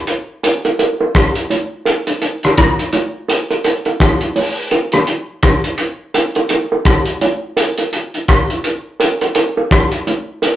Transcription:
0.07 closed hi-hat medium
0.43 closed hi-hat medium
0.43 high bongo medium
0.65 closed hi-hat soft
0.65 high bongo medium
0.79 closed hi-hat medium
0.79 high bongo medium
1.00 high bongo medium
1.15 kick loud
1.15 cross-stick loud
1.15 closed hi-hat medium
1.35 closed hi-hat medium
1.50 closed hi-hat medium
1.50 low bongo medium
1.85 closed hi-hat medium
1.85 high bongo medium
2.07 closed hi-hat medium
2.07 high bongo soft
2.22 closed hi-hat medium
2.22 high bongo soft
2.43 cross-stick medium
2.43 closed hi-hat soft
2.58 kick loud
2.58 cross-stick loud
2.58 closed hi-hat medium
2.79 closed hi-hat medium
2.93 closed hi-hat medium
2.93 low bongo medium
3.28 closed hi-hat medium
3.28 high bongo medium
3.50 closed hi-hat soft
3.50 high bongo medium
3.64 closed hi-hat medium
3.64 high bongo medium
3.85 closed hi-hat soft
3.85 high bongo medium
4.00 kick loud
4.00 cross-stick loud
4.00 closed hi-hat medium
4.21 closed hi-hat medium
4.36 open hi-hat medium
4.36 low bongo medium
4.71 closed hi-hat medium
4.71 high bongo medium
4.92 cross-stick medium
4.92 closed hi-hat medium
4.92 high bongo soft
5.07 closed hi-hat medium
5.43 kick loud
5.43 cross-stick loud
5.43 closed hi-hat medium
5.64 closed hi-hat medium
5.78 closed hi-hat medium
6.14 closed hi-hat medium
6.14 high bongo medium
6.35 closed hi-hat soft
6.35 high bongo medium
6.49 closed hi-hat medium
6.49 high bongo medium
6.72 high bongo medium
6.85 kick loud
6.85 cross-stick loud
6.85 closed hi-hat medium
7.06 closed hi-hat medium
7.21 closed hi-hat medium
7.21 low bongo medium
7.57 closed hi-hat medium
7.57 high bongo medium
7.78 closed hi-hat medium
7.78 high bongo soft
7.93 closed hi-hat medium
8.14 closed hi-hat soft
8.28 kick loud
8.28 cross-stick loud
8.28 closed hi-hat medium
8.50 closed hi-hat soft
8.64 closed hi-hat medium
9.00 closed hi-hat medium
9.00 high bongo medium
9.21 closed hi-hat soft
9.21 high bongo medium
9.35 closed hi-hat medium
9.35 high bongo medium
9.57 high bongo medium
9.71 kick loud
9.71 cross-stick loud
9.71 closed hi-hat medium
9.92 closed hi-hat medium
10.07 closed hi-hat medium
10.07 low bongo medium
10.42 closed hi-hat medium
10.42 high bongo medium

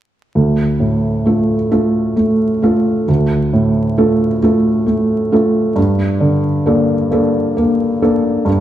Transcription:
0.35 3.04 D2 soft
0.80 1.54 A2 soft
1.26 1.68 A3 soft
1.26 1.68 F4 soft
1.26 1.68 A4 soft
1.71 2.13 A3 soft
1.71 2.13 F4 soft
1.71 2.14 A4 soft
2.16 2.61 A3 soft
2.62 3.04 A3 soft
2.62 3.04 F4 soft
2.62 3.04 A4 soft
3.08 5.73 D2 soft
3.53 4.25 A2 soft
3.98 4.39 A3 soft
3.98 4.39 F4 soft
3.98 4.39 A4 soft
4.42 4.83 A3 soft
4.42 4.83 F4 soft
4.42 4.84 A4 soft
4.86 5.31 A3 soft
5.32 5.73 A3 soft
5.32 5.73 F4 soft
5.32 5.73 A4 soft
5.76 8.42 G2 soft
6.20 6.92 D3 soft
6.66 7.07 A#3 soft
6.66 7.07 D4 soft
6.66 7.07 A4 soft
7.11 7.52 A#3 soft
7.11 7.52 D4 soft
7.11 7.53 A4 soft
7.57 8.01 A#3 soft
8.02 8.43 A#3 soft
8.02 8.44 D4 soft
8.02 8.43 A4 soft
8.45 8.60 G2 soft

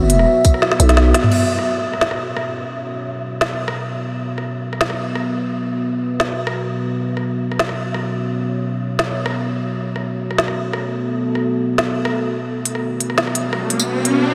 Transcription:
0.00 0.26 A1 loud
0.00 1.28 B3 medium
0.00 1.28 F#4 medium
0.00 1.31 E5 medium
0.10 closed hi-hat medium
0.19 cross-stick soft
0.45 kick medium
0.45 closed hi-hat medium
0.45 tambourine soft
0.54 cross-stick soft
0.62 snare medium
0.72 snare medium
0.80 1.13 B1 loud
0.80 closed hi-hat medium
0.80 tambourine soft
0.89 snare medium
0.89 closed hi-hat soft
0.97 snare medium
1.14 snare loud
1.14 closed hi-hat medium
1.24 mid tom loud
1.31 12.44 B3 medium
1.31 12.44 F#4 medium
1.31 4.10 C#5 medium
1.31 crash medium
1.59 cross-stick soft
1.93 cross-stick soft
2.01 snare loud
2.11 cross-stick medium
2.37 cross-stick medium
3.41 snare loud
3.68 cross-stick medium
4.11 6.89 B4 medium
4.38 cross-stick soft
4.73 cross-stick soft
4.81 snare loud
4.90 cross-stick soft
5.15 cross-stick medium
6.20 snare loud
6.47 cross-stick medium
6.90 9.68 C#5 medium
7.17 cross-stick soft
7.52 cross-stick soft
7.59 snare loud
7.69 cross-stick soft
7.94 cross-stick medium
8.99 snare loud
9.26 cross-stick medium
9.68 12.47 A4 medium
9.96 cross-stick soft
10.31 cross-stick soft
10.38 snare loud
10.48 cross-stick medium
10.73 cross-stick medium
11.35 cross-stick soft
11.78 snare loud
12.05 cross-stick medium
12.48 14.34 B3 medium
12.48 14.34 F#4 medium
12.48 14.34 C#5 medium
12.48 riser medium
12.65 closed hi-hat medium
12.75 cross-stick soft
13.00 closed hi-hat medium
13.10 cross-stick soft
13.18 snare loud
13.27 cross-stick medium
13.35 closed hi-hat medium
13.53 cross-stick medium
13.70 closed hi-hat medium
13.80 tambourine medium
14.05 closed hi-hat medium

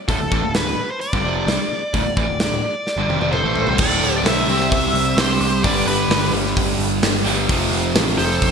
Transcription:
0.08 0.18 D1 loud
0.08 0.19 D2 loud
0.08 0.19 A2 loud
0.08 0.52 A4 medium
0.08 kick loud
0.08 open hi-hat soft
0.18 0.30 D1 medium
0.18 0.30 D2 medium
0.18 0.30 A2 medium
0.31 0.41 A1 medium
0.31 0.42 A2 medium
0.31 0.42 E3 medium
0.31 kick loud
0.42 0.64 D1 medium
0.42 0.62 D2 medium
0.42 0.62 A2 medium
0.54 0.91 B4 medium
0.54 snare loud
0.54 open hi-hat soft
0.65 0.76 D1 medium
0.65 0.76 D2 medium
0.65 0.78 A2 medium
0.65 snare soft
0.77 muted picked electric bass stroke soft
0.77 muted overdriven electric guitar stroke medium
0.91 1.00 C5 medium
1.01 3.29 D5 loud
1.01 open hi-hat soft
1.13 1.23 G1 medium
1.13 1.24 G2 medium
1.13 1.24 D3 medium
1.13 kick loud
1.23 1.45 F1 medium
1.23 1.47 F2 loud
1.23 1.47 C3 medium
1.23 1.47 F3 medium
1.47 1.57 C2 medium
1.47 1.59 C3 medium
1.47 1.59 G3 medium
1.47 snare loud
1.47 open hi-hat soft
1.58 muted picked electric bass stroke soft
1.58 muted overdriven electric guitar stroke medium
1.69 muted picked electric bass stroke soft
1.69 muted overdriven electric guitar stroke soft
1.93 2.03 D1 loud
1.93 2.04 D2 loud
1.93 2.05 A2 loud
1.93 kick loud
1.93 open hi-hat soft
2.03 2.15 D1 medium
2.03 2.17 D2 medium
2.03 2.16 A2 medium
2.17 2.27 A1 medium
2.17 2.28 A2 medium
2.17 2.28 E3 medium
2.17 kick loud
2.28 2.50 D1 medium
2.28 2.48 D2 medium
2.28 2.48 A2 medium
2.40 snare loud
2.40 open hi-hat medium
2.52 2.62 D1 medium
2.52 2.63 D2 medium
2.52 2.64 A2 medium
2.63 muted picked electric bass stroke soft
2.63 muted overdriven electric guitar stroke medium
2.87 snare soft
2.96 3.07 G1 medium
2.96 3.09 G2 medium
2.96 3.10 D3 medium
3.08 3.19 F1 medium
3.08 3.20 F2 medium
3.08 3.21 C3 medium
3.08 high tom medium
3.20 3.42 F1 medium
3.20 3.44 F2 medium
3.20 3.44 C3 loud
3.20 3.44 F3 medium
3.20 high tom medium
3.32 3.76 A4 medium
3.32 3.75 C5 medium
3.32 mid tom medium
3.44 3.66 A1 medium
3.44 3.67 A2 medium
3.44 3.67 E3 medium
3.44 3.68 A3 medium
3.56 floor tom medium
3.67 3.78 C2 loud
3.67 3.79 C3 medium
3.67 3.79 G3 loud
3.67 floor tom medium
3.78 4.00 D1 medium
3.78 4.47 D2 loud
3.78 4.48 A2 loud
3.78 4.16 A4 medium
3.78 4.16 D5 medium
3.78 kick loud
3.78 crash loud
3.83 4.49 D3 loud
4.02 4.23 D1 medium
4.02 open hi-hat medium
4.17 4.25 B4 medium
4.17 4.25 D5 medium
4.24 4.46 B1 medium
4.24 4.70 C5 medium
4.24 4.69 E5 loud
4.24 snare loud
4.24 open hi-hat medium
4.47 4.69 C2 medium
4.47 5.62 C3 loud
4.47 5.63 G3 loud
4.47 5.64 C4 loud
4.47 open hi-hat medium
4.61 snare soft
4.70 4.93 C2 medium
4.70 5.15 C5 medium
4.70 5.19 E5 loud
4.70 kick loud
4.70 open hi-hat medium
4.94 5.15 C2 medium
4.94 open hi-hat medium
5.16 5.38 C2 medium
5.16 5.62 C3 medium
5.16 5.63 G3 medium
5.16 5.63 C4 medium
5.16 5.62 G4 medium
5.16 5.61 C5 medium
5.16 snare loud
5.16 open hi-hat medium
5.40 5.62 C2 medium
5.40 open hi-hat medium
5.63 5.85 G1 loud
5.63 7.24 G2 loud
5.63 7.25 D3 loud
5.63 7.25 G3 loud
5.63 5.86 B4 medium
5.63 5.87 D5 medium
5.63 kick loud
5.63 open hi-hat medium
5.85 6.07 G1 medium
5.85 6.30 B4 medium
5.85 open hi-hat medium
5.90 6.32 G4 medium
6.08 6.30 G1 medium
6.08 snare loud
6.08 open hi-hat medium
6.32 6.54 G1 medium
6.32 7.48 G2 medium
6.32 7.48 D3 medium
6.32 7.47 G3 medium
6.32 open hi-hat medium
6.46 snare soft
6.57 6.78 G1 medium
6.57 kick loud
6.57 open hi-hat medium
6.79 7.00 G1 medium
6.79 open hi-hat medium
7.02 7.24 G1 medium
7.02 snare loud
7.02 open hi-hat medium
7.25 7.46 G1 medium
7.25 7.48 D3 medium
7.25 7.48 G3 loud
7.25 open hi-hat medium
7.29 7.48 G2 medium
7.49 7.70 F1 medium
7.49 8.51 F2 loud
7.49 8.51 C3 loud
7.49 8.51 F3 loud
7.49 kick loud
7.49 open hi-hat medium
7.71 7.93 F1 medium
7.71 open hi-hat medium
7.95 8.16 A1 medium
7.95 snare loud
7.95 open hi-hat medium
8.17 8.39 F1 medium
8.17 8.51 F2 medium
8.17 8.51 C3 medium
8.17 8.51 F3 medium
8.17 8.51 A4 loud
8.17 8.51 C5 loud
8.17 open hi-hat medium
8.31 snare soft
8.42 8.51 F1 medium
8.42 kick loud
8.42 open hi-hat medium

